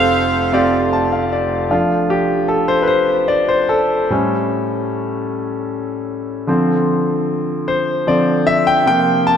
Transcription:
Already playing: grand piano F1 F2 A3 C4 F4 G4 C5, saxophone section A4 C5 F5
0.52 grand piano A3 C4 F4 G4 D5
0.93 grand piano A5
1.12 grand piano F5
1.33 grand piano D5
1.70 grand piano F3 A3 D4 F4
2.10 grand piano G4
2.48 grand piano A4
2.68 grand piano C5
2.83 grand piano B4
2.87 grand piano C5
3.28 grand piano D5
3.49 grand piano C5
3.69 grand piano A4
4.10 grand piano A2 G3 C#4
6.47 grand piano D3 F3 C4
7.68 grand piano C5
8.07 grand piano D3 F3 C4 D5
8.47 grand piano E5
8.67 grand piano G5
8.86 grand piano C3 F3 A#3 G5
9.27 grand piano A5

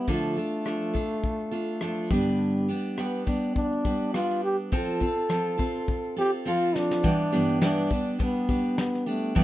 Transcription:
Already playing: trombone B3
0.07 steel-string acoustic guitar D3 F3 D4 F4 A4, kick, shaker
0.12 trombone A3
0.24 shaker
0.36 steel-string acoustic guitar D4 F4 A4
0.53 shaker
0.65 steel-string acoustic guitar F3 D4 F4 A4, cross-stick, shaker
0.82 shaker
0.94 steel-string acoustic guitar D4 F4 A4, kick, shaker
1.10 shaker
1.24 kick, shaker
1.40 shaker
1.51 steel-string acoustic guitar D4 F4 A4
1.69 shaker
1.81 steel-string acoustic guitar F3 D4 F4 A4, trombone A3, cross-stick, shaker
1.97 shaker
2.10 steel-string acoustic guitar G2 D3 G3 B3 D4 G4, trombone G3, kick
2.26 shaker
2.39 shaker
2.56 shaker
2.69 steel-string acoustic guitar G3 B3 D4 G4
2.85 shaker
2.97 steel-string acoustic guitar G3 B3 D4 G4, trombone B3, cross-stick, shaker
3.14 shaker
3.26 steel-string acoustic guitar G3 B3 D4 G4, trombone D4, kick
3.42 shaker
3.55 trombone D4, kick, shaker
3.72 shaker
3.85 steel-string acoustic guitar G3 B3 D4 G4, kick, shaker
4.01 shaker
4.14 steel-string acoustic guitar G3 B3 D4 G4, trombone F4, cross-stick, shaker
4.30 cross-stick, shaker
4.44 trombone G4
4.59 shaker
4.72 steel-string acoustic guitar F3 C4 F4 A4, trombone A4, kick, shaker
4.89 shaker
5.00 steel-string acoustic guitar C4 F4 A4, kick, shaker
5.17 shaker
5.29 steel-string acoustic guitar F3 C4 F4 A4, cross-stick, shaker
5.46 shaker
5.58 steel-string acoustic guitar C4 F4 A4, kick, shaker
5.74 shaker
5.88 kick, shaker
6.04 shaker
6.17 steel-string acoustic guitar C4 F4 A4, trombone G4
6.33 shaker
6.45 steel-string acoustic guitar F3 C4 F4 A4, trombone F4
6.76 trombone D4, snare
6.91 snare
7.03 steel-string acoustic guitar G2 E3 G3 B3 D4 G4, kick, shaker
7.20 shaker
7.32 steel-string acoustic guitar G2 E3 G3 B3 D4 G4, shaker
7.49 shaker
7.61 steel-string acoustic guitar G2 E3 G3 B3 D4 G4, trombone D4, snare, shaker
7.77 shaker
7.90 steel-string acoustic guitar G3 B3 D4 G4, kick, shaker
8.06 shaker
8.19 steel-string acoustic guitar G3 B3 D4 G4, trombone B3, kick, shaker
8.36 shaker
8.49 steel-string acoustic guitar G3 B3 D4 G4, kick
8.66 shaker
8.78 trombone B3, snare, shaker
8.94 snare, shaker
9.06 steel-string acoustic guitar G3 B3 D4 G4, trombone A3
9.23 shaker
9.35 steel-string acoustic guitar G2 E3 G3 B3 D4 G4, trombone B3, kick, shaker

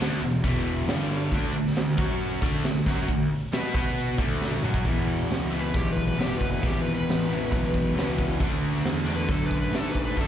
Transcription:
0.00 picked electric bass D2, overdriven electric guitar D3 A3 D4, snare, open hi-hat
0.22 picked electric bass E1, overdriven electric guitar E2 B2, open hi-hat
0.43 picked electric bass E1, overdriven electric guitar E2 B2 E3, kick, open hi-hat
0.66 open hi-hat
0.87 picked electric bass G1, overdriven electric guitar G2 D3 G3, snare, open hi-hat
1.09 snare, open hi-hat
1.31 picked electric bass D2, overdriven electric guitar D3 A3 D4, kick, open hi-hat
1.54 picked electric bass D2, overdriven electric guitar D3 A3, open hi-hat
1.66 snare
1.76 picked electric bass D2, overdriven electric guitar D3 A3, snare, open hi-hat
1.97 picked electric bass F#2, overdriven electric guitar F#3 C#4 F#4, kick, open hi-hat
2.19 open hi-hat
2.41 picked electric bass D2, overdriven electric guitar D3 A3 D4, kick, open hi-hat
2.64 picked electric bass D2, overdriven electric guitar D3 A3, snare, open hi-hat
2.86 picked electric bass F#2, overdriven electric guitar F#3 C#4 F#4, kick, snare, open hi-hat
3.08 picked electric bass D2, overdriven electric guitar D3 A3, kick, open hi-hat
3.31 open hi-hat
3.52 picked electric bass B2, overdriven electric guitar B3 F#4 B4, snare, open hi-hat
3.74 picked electric bass B2, overdriven electric guitar B3 F#4 B4, kick, open hi-hat
3.95 open hi-hat
4.17 picked electric bass D2, overdriven electric guitar D3 A3 D4, kick, open hi-hat
4.41 snare
4.51 mid tom
4.63 picked electric bass F#2, overdriven electric guitar F#3 C#4 F#4, mid tom
4.74 kick
4.84 overdriven electric guitar E2 B2 E3, picked electric bass E2, kick, open hi-hat
5.08 open hi-hat
5.20 snare
5.30 picked electric bass C#2, snare, open hi-hat
5.51 overdriven electric guitar E2 B2 E3, open hi-hat
5.61 electric slide guitar B4
5.74 picked electric bass B1, electric slide guitar G4, kick, open hi-hat
5.92 electric slide guitar B4
5.97 kick, open hi-hat
6.08 electric slide guitar B4
6.16 picked electric bass F#1, overdriven electric guitar E2 B2 E3, open hi-hat
6.21 electric slide guitar G4, snare
6.38 electric slide guitar B4, kick, open hi-hat
6.53 electric slide guitar B4
6.61 picked electric bass G#1, overdriven electric guitar E2 B2 E3, kick, open hi-hat
6.67 electric slide guitar G4
6.81 electric slide guitar B4
6.86 open hi-hat
6.95 electric slide guitar B4
7.07 picked electric bass A1, snare, open hi-hat
7.29 overdriven electric guitar E2 B2 E3, open hi-hat
7.52 picked electric bass B1, kick, open hi-hat
7.74 kick, open hi-hat
7.95 picked electric bass C#2, overdriven electric guitar E2 B2 E3, snare, open hi-hat
8.18 kick, open hi-hat
8.39 picked electric bass D2, overdriven electric guitar D3 A3 D4, kick, open hi-hat
8.63 open hi-hat
8.75 snare
8.84 picked electric bass E2, snare, open hi-hat
9.05 overdriven electric guitar A3 D4, open hi-hat
9.10 overdriven electric guitar D3
9.16 electric slide guitar B4
9.28 picked electric bass F#2, electric slide guitar A4, kick, open hi-hat
9.46 electric slide guitar B4
9.51 kick, open hi-hat
9.61 electric slide guitar B4
9.71 picked electric bass G#2, overdriven electric guitar D3 A3 D4, snare, open hi-hat
9.78 electric slide guitar A4
9.91 electric slide guitar B4, open hi-hat
9.95 kick
10.05 electric slide guitar B4
10.16 picked electric bass F#2, overdriven electric guitar D3 A3 D4, kick, open hi-hat
10.21 electric slide guitar A4

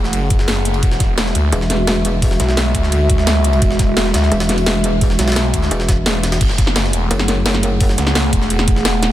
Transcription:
Already playing: detuned saw bass E1, analog synth pad A3 G#4 F#5
0.04 snare
0.13 detuned saw bass F#1, closed hi-hat, ride
0.30 kick, closed hi-hat, ride
0.39 snare
0.48 snare, closed hi-hat, ride
0.65 closed hi-hat, ride
0.74 ride
0.83 detuned saw bass E1, analog synth pad G#3 F#4 E5, kick, closed hi-hat, ride
0.92 snare
1.00 kick, snare, closed hi-hat, ride
1.18 snare, closed hi-hat, ride
1.26 snare
1.35 detuned saw bass D2, closed hi-hat, ride
1.52 wobble bass E1, closed hi-hat, ride
1.61 snare
1.70 snare, closed hi-hat, ride
1.87 snare, closed hi-hat, ride
2.05 closed hi-hat, ride
2.22 kick, closed hi-hat, open hi-hat
2.31 snare
2.40 detuned saw bass B1, snare, closed hi-hat, ride
2.49 snare
2.57 snare, closed hi-hat, ride
2.75 detuned saw bass D2, kick, closed hi-hat, ride
2.83 snare
2.92 detuned saw bass D2, closed hi-hat, ride
3.10 kick, closed hi-hat, ride
3.18 snare
3.27 snare, closed hi-hat, ride
3.40 detuned saw bass C#2
3.44 closed hi-hat, ride
3.53 ride
3.62 detuned saw bass E1, kick, closed hi-hat, ride
3.71 snare
3.79 kick, snare, closed hi-hat, ride
3.97 snare, closed hi-hat, ride
4.05 snare
4.14 detuned saw bass D2, snare, closed hi-hat, ride
4.23 snare
4.32 wobble bass E1, closed hi-hat, ride
4.40 snare, ride
4.49 snare, closed hi-hat
4.58 ride
4.66 snare, closed hi-hat, ride
4.84 closed hi-hat, ride
5.01 kick, closed hi-hat, open hi-hat
5.10 snare
5.19 detuned saw bass B1, snare, closed hi-hat, ride
5.28 snare, ride
5.32 snare, ride
5.36 snare, closed hi-hat, ride
5.54 detuned saw bass D2, kick, closed hi-hat, ride
5.62 snare
5.71 wobble bass E1, closed hi-hat, ride
5.80 snare
5.89 kick, snare, closed hi-hat, ride
6.06 snare, closed hi-hat, ride
6.23 snare, closed hi-hat, ride
6.32 snare, ride
6.41 detuned saw bass F#1, analog synth pad A3 G#4 F#5, kick, closed hi-hat, ride, crash
6.50 snare
6.58 kick, snare, closed hi-hat, ride
6.67 snare
6.76 snare, closed hi-hat, ride
6.85 snare
6.93 detuned saw bass E1, closed hi-hat, ride
7.11 wobble bass F#1, closed hi-hat, ride
7.19 snare
7.28 snare, closed hi-hat, ride
7.46 snare, closed hi-hat, ride
7.54 snare
7.63 closed hi-hat, ride
7.80 kick, closed hi-hat, open hi-hat
7.89 snare
7.98 detuned saw bass C#2, snare, closed hi-hat, ride
8.07 snare
8.15 snare, closed hi-hat, ride
8.33 detuned saw bass E1, kick, closed hi-hat, ride
8.42 snare
8.50 detuned saw bass E1, closed hi-hat, ride
8.59 snare
8.68 kick, closed hi-hat, ride
8.76 snare
8.85 snare, closed hi-hat, ride
8.98 detuned saw bass D#1
9.03 snare, closed hi-hat, ride

